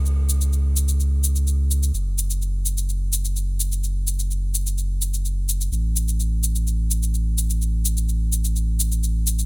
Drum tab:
SH |x-xxx-xxx-xxx-xx|x-xxx-xxx-xxx-xx|x-xxx-xxx-xxx-xx|x-xxx-xxx-xxx-xx|

SH |x-xxx-xxx-xxx-xx|